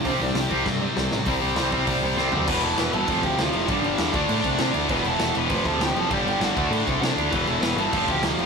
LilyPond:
<<
  \new Staff \with { instrumentName = "Lead electric guitar" } { \time 4/4 \key c \major \tempo 4 = 198 g'8 d'8 g'4 r2 | r1 | <b' b''>8 <a' a''>8 <b' b''>8 <a' a''>4 <g' g''>8 <f' f''>8 <e' e''>8 | <d' d''>8 <d' d''>2. r8 |
<b' b''>8 <a' a''>4 <b' b''>4 <a' a''>8 <g' g''>8 <a' a''>8 | <g' g''>8 <g' g''>8 <fis' fis''>2 r4 | <b' b''>8 <a' a''>8 <b' b''>8 <a' a''>4 <g' g''>8 r4 | }
  \new Staff \with { instrumentName = "Distorted electric guitar" } { \clef bass \time 4/4 \key c \major <c g c'>2 <c g c'>2 | <c g c'>4 <c g c'>8 <c g c'>8 <c g c'>4 <c g c'>8 <c g c'>8 | <e, b, e>2 <f, c f>2 | <g, d g>4. <d a d'>2~ <d a d'>8 |
<e, b, e>2 <f, c f>2 | <g, d g>4. <d a d'>2~ <d a d'>8 | <e, b, e>2 <f, c f>2 | }
  \new Staff \with { instrumentName = "Overdriven electric guitar" } { \clef bass \time 4/4 \key c \major <c g c'>8 <c g>8 <c g>8 <c g c'>8 <c g>8 <c g>8 <c g>8 <c g>8 | <c g c'>4 <c g c'>8 <c g c'>8 <c g c'>4 <c g c'>8 <c g c'>8 | <e, b, e>2 <f, c f>2 | <g, d g>4. <d a d'>2 <d a d'>8 |
<e, b, e>2 <f, c f>2 | <g, d g>4. <d a d'>2 <d a d'>8 | <e, b, e>2 <f, c f>2 | }
  \new Staff \with { instrumentName = "Distorted electric guitar" } { \clef bass \time 4/4 \key c \major <c g c'>8 <c g>8 <c g>8 <c g c'>8 <c g>8 <c g>8 <c g>8 <c g>8 | <c g c'>4 <c g c'>8 <c g c'>8 <c g c'>4 <c g c'>8 <c g c'>8 | <e, b, e>4. <e, b, e>8 <f, c f>4. <f, c f>8 | <g, d g>4. <d a d'>4. <d a d'>4 |
<e, b, e>4. <e, b, e>8 <f, c f>4. <f, c f>8 | <g, d g>4. <d a d'>4. <d a d'>4 | <e, b, e>4. <e, b, e>8 <f, c f>4. <f, c f>8 | }
  \new Staff \with { instrumentName = "Picked electric bass" } { \clef bass \time 4/4 \key c \major c,8 c,8 c,8 c,8 g,4 c,8 a,,8 | c,8 c,8 c,4 c,8 c,8 c,8 d,8 | e,,8 e,,8 e,,8 g,,8 f,,8 d,8 d,8 f,,8 | g,,8 g,,8 e,8 d,8 a,8 c,8 c8 d,8 |
e,,8 e,,8 e,,8 e,,8 f,,8 d,8 d,8 fis,,8 | g,,8 g,,8 g,,8 d,8 a,8 c,8 c8 d,8 | e,,8 e,,8 e,,8 g,,8 f,,8 d,8 d,8 f,,8 | }
  \new DrumStaff \with { instrumentName = "Drums" } \drummode { \time 4/4 <hho bd>4 <hho sn>8 bd8 <bd sn>4 sn8 sn8 | <hho bd>4 <hho sn>8 bd8 <hho bd>4 sn8 tomfh8 | <cymc bd>8 cymc8 <cymc sn>8 cymc8 <cymc bd>8 <cymc bd>8 <cymc sn>8 cymc8 | <cymc bd>8 cymc8 <cymc sn>8 <cymc bd>8 cymc8 <cymc bd>8 <cymc sn>8 cymc8 |
<cymc bd>8 cymc8 <cymc sn>8 cymc8 <cymc bd>8 <cymc bd>8 <cymc sn>8 cymc8 | <cymc bd>8 cymc8 <cymc sn>8 <cymc bd>8 cymc8 <cymc bd>8 <cymc sn>8 cymc8 | <cymc bd>8 cymc8 <cymc sn>8 cymc8 <cymc bd>8 <cymc bd>8 <cymc sn>8 cymc8 | }
>>